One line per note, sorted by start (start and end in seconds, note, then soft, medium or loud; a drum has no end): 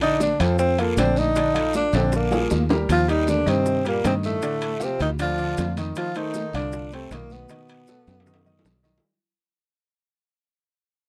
0.00 0.34 A#1 medium
0.00 0.33 D3 medium
0.00 0.33 D4 medium
0.00 0.20 D#4 loud
0.00 0.33 D5 medium
0.00 high conga soft
0.00 high timbale medium
0.00 maracas soft
0.20 0.42 D4 medium
0.20 high bongo medium
0.20 high conga medium
0.20 short guiro medium
0.20 maracas medium
0.40 0.93 F2 medium
0.40 0.71 F3 medium
0.40 0.59 C4 medium
0.40 0.72 F4 medium
0.40 0.72 A4 medium
0.40 high conga soft
0.40 high timbale medium
0.40 short guiro medium
0.40 maracas soft
0.59 0.81 C4 medium
0.59 high bongo medium
0.59 high conga soft
0.59 long guiro medium
0.59 maracas medium
0.78 0.94 F3 medium
0.78 0.98 A#3 medium
0.78 0.94 F4 medium
0.78 0.94 A4 medium
0.78 high conga soft
0.78 high timbale medium
0.78 maracas soft
0.97 1.87 A#1 medium
0.97 1.29 D3 medium
0.97 1.20 C4 medium
0.97 1.29 D4 medium
0.97 1.29 D5 medium
0.97 high bongo medium
0.97 low bongo medium
0.97 high conga medium
0.97 high timbale medium
0.97 low timbale medium
0.97 short guiro medium
0.97 maracas medium
1.16 1.75 D#4 loud
1.16 high conga medium
1.16 short guiro medium
1.16 maracas soft
1.35 1.51 D3 medium
1.35 1.51 D4 medium
1.35 1.52 D5 medium
1.35 high bongo medium
1.35 high conga soft
1.35 high timbale medium
1.35 long guiro medium
1.35 maracas medium
1.54 1.86 F3 medium
1.54 1.86 F4 medium
1.54 1.86 A4 medium
1.54 high bongo soft
1.54 high conga soft
1.54 high timbale medium
1.54 maracas soft
1.73 1.97 D4 medium
1.73 high bongo medium
1.73 high conga medium
1.73 short guiro medium
1.73 maracas medium
1.93 2.47 A#1 medium
1.93 2.24 D3 medium
1.93 2.14 C4 medium
1.93 2.25 D4 medium
1.93 2.25 D5 medium
1.93 high bongo soft
1.93 high timbale medium
1.93 short guiro medium
1.93 maracas soft
2.12 2.68 A#3 medium
2.12 high bongo medium
2.12 high conga soft
2.12 long guiro medium
2.12 maracas medium
2.31 2.63 F3 medium
2.31 2.63 F4 medium
2.31 2.63 G#4 medium
2.31 high bongo medium
2.31 high conga soft
2.31 low timbale medium
2.31 maracas soft
2.50 2.85 D#2 medium
2.50 high bongo medium
2.50 high conga medium
2.50 short guiro medium
2.50 maracas medium
2.69 2.85 G3 medium
2.69 2.86 G4 medium
2.69 2.86 A#4 medium
2.69 low bongo medium
2.69 low timbale medium
2.69 short guiro medium
2.69 maracas soft
2.89 3.43 D#2 medium
2.89 3.07 F3 loud
2.89 3.09 F4 loud
2.89 high bongo medium
2.89 high conga soft
2.89 high timbale medium
2.89 long guiro medium
2.89 maracas medium
3.08 3.30 D#3 medium
3.08 3.39 G3 medium
3.08 3.31 D#4 medium
3.08 3.40 G4 medium
3.08 3.40 A#4 medium
3.08 high conga soft
3.08 high timbale medium
3.08 maracas soft
3.27 3.48 D3 medium
3.27 3.51 D4 medium
3.27 high bongo medium
3.27 high conga medium
3.27 short guiro medium
3.27 maracas medium
3.46 4.00 G2 medium
3.46 3.85 C3 medium
3.46 3.78 D#3 medium
3.46 3.86 C4 loud
3.46 3.78 D#4 medium
3.46 3.78 D#5 medium
3.46 high conga soft
3.46 high timbale medium
3.46 short guiro medium
3.46 maracas soft
3.66 high bongo medium
3.66 high conga soft
3.66 long guiro medium
3.66 maracas medium
3.85 4.03 A#2 medium
3.85 4.01 G3 medium
3.85 4.04 A#3 medium
3.85 4.01 G4 medium
3.85 4.01 A#4 medium
3.85 high conga soft
3.85 high timbale medium
3.85 maracas soft
4.04 4.38 G2 medium
4.04 4.14 C3 medium
4.04 4.36 D#3 medium
4.04 4.14 C4 medium
4.04 4.36 D#4 medium
4.04 4.36 D#5 medium
4.04 high bongo medium
4.04 low bongo medium
4.04 high conga medium
4.04 high timbale medium
4.04 short guiro medium
4.04 maracas medium
4.23 4.83 A2 medium
4.23 4.85 A3 medium
4.23 high conga medium
4.23 short guiro medium
4.23 maracas soft
4.42 4.73 D3 medium
4.42 4.74 D4 medium
4.42 4.74 D5 medium
4.42 high bongo medium
4.42 high conga soft
4.42 high timbale medium
4.42 long guiro medium
4.42 maracas medium
4.61 high bongo soft
4.61 high conga soft
4.61 high timbale medium
4.61 maracas soft
4.80 5.00 C3 medium
4.80 5.12 F3 medium
4.80 5.01 C4 medium
4.80 5.12 F4 medium
4.80 5.12 G4 medium
4.80 high bongo medium
4.80 high conga medium
4.80 short guiro medium
4.80 maracas medium
4.99 5.54 D2 medium
4.99 5.10 D#3 medium
4.99 5.10 D#4 medium
4.99 high bongo soft
4.99 high timbale medium
4.99 short guiro medium
4.99 maracas soft
5.19 5.35 D3 medium
5.19 5.74 F3 medium
5.19 5.35 D4 medium
5.19 5.74 F4 loud
5.19 5.35 D5 medium
5.19 high bongo medium
5.19 high conga soft
5.19 high timbale medium
5.19 long guiro medium
5.19 maracas medium
5.38 5.70 D3 medium
5.38 5.70 D4 medium
5.38 5.70 D5 medium
5.38 high conga soft
5.38 maracas soft
5.57 5.92 F2 medium
5.57 high bongo medium
5.57 low bongo medium
5.57 high conga medium
5.57 high timbale medium
5.57 low timbale medium
5.57 short guiro medium
5.57 maracas medium
5.77 6.09 D#3 medium
5.77 6.09 D#4 medium
5.77 6.09 D#5 medium
5.77 high bongo soft
5.77 high conga medium
5.77 high timbale medium
5.77 short guiro medium
5.77 maracas soft
5.95 6.17 F3 medium
5.95 6.19 F4 loud
5.95 high bongo medium
5.95 high conga soft
5.95 high timbale medium
5.95 long guiro medium
5.95 maracas medium
6.15 6.54 D#3 medium
6.15 6.47 A3 medium
6.15 6.54 D#4 medium
6.15 6.47 A4 medium
6.15 6.47 C5 medium
6.15 high conga soft
6.15 high timbale medium
6.15 maracas soft
6.34 high bongo medium
6.34 high conga medium
6.34 short guiro medium
6.34 maracas medium
6.53 7.07 C2 medium
6.53 6.90 D3 medium
6.53 6.85 F3 medium
6.53 6.90 D4 medium
6.53 6.86 F4 medium
6.53 6.86 D5 medium
6.53 high conga soft
6.53 high timbale medium
6.53 short guiro medium
6.53 maracas soft
6.72 high bongo medium
6.72 high conga soft
6.72 long guiro medium
6.72 maracas medium
6.91 7.13 C3 medium
6.91 7.08 A3 medium
6.91 7.15 C4 medium
6.91 7.08 A4 medium
6.91 7.08 C5 medium
6.91 high conga soft
6.91 high timbale medium
6.91 maracas soft
7.11 7.45 B1 medium
7.11 7.33 A#2 medium
7.11 7.43 D#3 medium
7.11 7.33 A#3 medium
7.11 7.43 D#4 medium
7.11 7.44 D#5 medium
7.11 high bongo medium
7.11 low bongo medium
7.11 high conga medium
7.11 high timbale medium
7.11 short guiro medium
7.11 maracas medium
7.30 8.85 B2 medium
7.30 8.85 B3 medium
7.30 high conga medium
7.30 short guiro medium
7.30 maracas soft
7.49 7.81 D#3 medium
7.49 7.82 D#4 medium
7.49 7.82 D#5 medium
7.49 high bongo medium
7.49 high conga soft
7.49 high timbale medium
7.49 long guiro medium
7.49 maracas medium
7.68 high bongo soft
7.68 high conga soft
7.68 high timbale medium
7.68 maracas soft
7.87 8.19 F#3 medium
7.87 8.20 F#4 medium
7.87 8.20 A4 medium
7.87 high bongo medium
7.87 high conga medium
7.87 short guiro medium
7.87 maracas medium
8.07 8.61 F#2 medium
8.07 high bongo soft
8.07 high conga medium
8.07 high timbale medium
8.07 short guiro medium
8.07 maracas soft
8.20 high timbale medium
8.26 8.42 D#3 medium
8.26 8.42 D#4 medium
8.26 8.42 D#5 medium
8.26 high bongo medium
8.26 long guiro medium
8.26 maracas medium
8.34 high timbale medium
8.46 8.77 D#3 medium
8.46 8.77 D#4 medium
8.46 8.77 D#5 medium
8.46 low conga medium
8.46 maracas soft
8.59 low timbale medium
8.65 8.99 B1 medium
8.65 high bongo medium
8.65 low bongo medium
8.65 low conga medium
8.65 short guiro medium
8.65 maracas medium
8.72 low timbale medium
8.83 8.99 D#3 medium
8.83 8.99 D#4 medium
8.83 9.00 D#5 medium
8.83 high bongo soft
8.83 low conga medium
8.83 low timbale medium
8.83 short guiro medium
8.83 maracas soft
8.98 low timbale medium